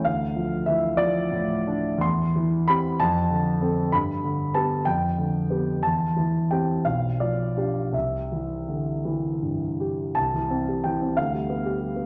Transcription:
<<
  \new Staff \with { instrumentName = "Grand piano" } { \time 6/8 \key c \major \tempo 4. = 61 f''4 e''8 d''4. | c'''4 b''8 a''4. | b''4 a''8 g''4. | a''4 g''8 f''8 d''4 |
e''2~ e''8 r8 | a''4 g''8 f''4. | }
  \new Staff \with { instrumentName = "Grand piano" } { \clef bass \time 6/8 \key c \major d,8 f8 e8 f8 a,8 d'8 | e,8 e8 <c' g'>8 f,8 d8 <c' a'>8 | g,8 d8 <b g'>8 f,8 d8 <b g'>8 | e,8 e8 <c' g'>8 b,,8 f8 <d' g'>8 |
c,8 e8 d8 e8 g,8 g'8 | c,16 e16 c'16 g'16 e16 c'16 d,16 g16 b16 g'16 g16 b16 | }
>>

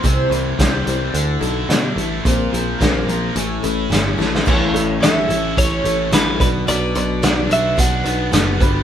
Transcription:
<<
  \new Staff \with { instrumentName = "Clean electric guitar" } { \time 4/4 \key a \mixolydian \tempo 4 = 109 r1 | r1 | r4 e''4 cis''4 b'8 b'8 | d''4. e''8 fis''4. r8 | }
  \new Staff \with { instrumentName = "Upright piano" } { \time 4/4 \key a \mixolydian r1 | r1 | <e' a' cis''>8 <e' a' e''>4. r4. <fis' b' d''>8~ | <fis' b' d''>8 <fis' b' d''>4. r4. <fis' g' b'>8 | }
  \new Staff \with { instrumentName = "Steel-string acoustic guitar" } { \time 4/4 \key a \mixolydian <c e g c' e' c''>8 <g c' e' c''>8 <g c' e' c''>8 <g c' e' c''>8 <d a d' e' a'>8 <d' e' a'>8 <a d' e' a'>8 <d' e' a'>8 | <bes c' f' bes'>8 <c' f' bes'>8 <bes c' f' bes'>8 <c' f' bes'>8 <a, e a cis' e' a'>8 <a cis' e' a'>8 <a cis' e' a'>8 <a cis' e' a'>8 | <a, e a cis' e' a'>8 <a cis' e' a'>8 <a, e a cis' e' a'>8 <a cis' e' a'>8 <a cis' e' a'>8 <a cis' e' a'>8 <a, e a cis' e' a'>8 <b d' fis' b'>8 | <b, fis b d' fis' b'>8 <b d' fis' b'>8 <b, fis b d' fis' b'>8 <b d' fis' b'>8 <b d' fis' b'>8 <b d' fis' b'>8 <b, fis b d' fis' b'>8 <d' fis' b'>8 | }
  \new Staff \with { instrumentName = "Overdriven electric guitar" } { \time 4/4 \key a \mixolydian c8 e8 g8 e8 d8 e'8 d'8 a8 | bes,8 f8 bes8 f8 a,8 e'8 cis'8 a8 | a,4 cis'8 e'8 cis'8 a8 e'8 b,8 | b,4 d'8 fis'8 d'8 b8 fis'8 g8 | }
  \new Staff \with { instrumentName = "Picked electric bass" } { \clef bass \time 4/4 \key a \mixolydian c,8 c,8 c,8 c,8 d,8 b,,8 b,8 a,,8 | bes,,8 bes,,8 bes,,8 bes,,8 a,,8 a,,8 g,,8 a,,8 | a,,8 a,,8 a,,8 a,,8 a,,8 a,,8 a,,8 b,,8 | b,,8 b,,8 b,,8 b,,8 b,,8 b,,8 fis,,8 g,,8 | }
  \new DrumStaff \with { instrumentName = "Drums" } \drummode { \time 4/4 <hh bd>8 hh8 <hh bd sn>8 hh8 hh8 hh8 <hh sn>8 hh8 | <hh bd>8 hh8 <hh bd sn>8 hh8 hh8 hh8 <hh sn>8 sn16 sn16 | <cymc bd>8 hh8 <hh sn>8 hh8 <hh bd>8 hh8 <hh sn>8 <hh bd>8 | hh8 hh8 <hh sn>8 hh8 <hh bd>8 hh8 <hh sn>8 <hh bd>8 | }
>>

